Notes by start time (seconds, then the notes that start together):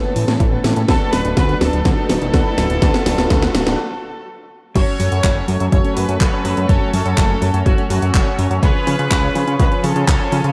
Already playing: E3 A3 B3 C#4 E4 A4 B4, riser
0.04 B3
0.16 A2 E3, open hi-hat
0.28 A2 C#4, snare, closed hi-hat
0.40 A1 E3 C#4 E4 A4 B4, kick, closed hi-hat
0.52 B3
0.64 A2 E3, snare, open hi-hat
0.76 A2 C#4, closed hi-hat
0.88 D2 F#3 D4 F#4 A4 B4, kick, snare, closed hi-hat
1.01 B3
1.13 D1 F#3 B4, snare, open hi-hat
1.25 D1 D4, closed hi-hat
1.37 D2 F#3 B4, kick, snare, closed hi-hat
1.49 B3, closed hi-hat
1.61 D1 F#3 A4, snare, open hi-hat
1.73 D1 D4, closed hi-hat
1.85 D2 F#3, kick, snare, closed hi-hat
1.97 B3
2.09 D1 F#3, snare, open hi-hat
2.22 D1 D4, closed hi-hat
2.34 D2 F#3 D4 F#4 A4 B4, kick, snare, closed hi-hat
2.46 B3
2.58 D1 F#3, snare, open hi-hat
2.70 D1 D4, closed hi-hat
2.82 D2 F#3 D4 F#4 A4 B4, kick, snare, closed hi-hat
2.94 B3, snare, closed hi-hat
3.06 D1 F#3, snare, open hi-hat
3.18 D1 D4, snare, closed hi-hat
3.30 D2 F#3, kick, snare, closed hi-hat
3.42 B3, snare, closed hi-hat
3.54 D1 F#3, snare, open hi-hat
3.67 D1 D4, snare, closed hi-hat
4.75 F#1 F#3 A3 C#4 F#4 A4 C#5, kick, closed hi-hat, crash
4.88 C#4
5.00 F#2 F#3, open hi-hat
5.12 F#2 F#4, closed hi-hat
5.24 F#1 F#3, kick, clap, closed hi-hat
5.36 C#4
5.48 F#2 F#3, open hi-hat
5.60 F#2 F#4, closed hi-hat
5.72 F#1 F#3 C#5, kick, closed hi-hat
5.85 C#4, closed hi-hat
5.96 F#2 F#3 B4, open hi-hat
6.09 F#2 F#4, closed hi-hat
6.21 F#1 F#3 C#4 F#4 A4 C#5, kick, clap, closed hi-hat
6.33 C#4
6.45 F#2 F#3, open hi-hat
6.57 F#2 F#4, closed hi-hat
6.69 F#1 F#3 C#4 F#4 A4 C#5, kick, closed hi-hat
6.81 C#4
6.93 F#2 F#3 A4, open hi-hat
7.05 F#2 F#4, closed hi-hat
7.17 F#1 F#3, kick, clap, closed hi-hat
7.30 C#4
7.42 F#2 F#3, open hi-hat
7.54 F#2 F#4, closed hi-hat
7.66 F#1 F#3 F#4, kick, closed hi-hat
7.78 C#4, closed hi-hat
7.90 F#2 F#3 F#4, open hi-hat
8.02 F#2 F#4, closed hi-hat
8.14 F#1 F#3 C#4 F#4 A4 C#5, kick, clap, closed hi-hat
8.26 C#4
8.39 F#2 F#3, open hi-hat
8.50 F#2 F#4, closed hi-hat
8.63 C#2 F3 C#4 F4 G#4 B4 C#5, kick, closed hi-hat
8.75 C#4
8.87 C#3 F3, open hi-hat
8.99 C#3 F4, closed hi-hat
9.11 C#2 F3, kick, clap, closed hi-hat
9.23 C#4
9.35 C#3 F3, open hi-hat
9.47 C#3 F4, closed hi-hat
9.59 C#2 F3 B4, kick, closed hi-hat
9.72 C#4, closed hi-hat
9.84 C#3 F3 A4, open hi-hat
9.96 C#3 F4, closed hi-hat
10.08 C#2 F3 C#4 F4 C#5 G#5, kick, clap, closed hi-hat
10.20 C#4
10.32 C#3 F3, open hi-hat
10.44 C#3 F4, closed hi-hat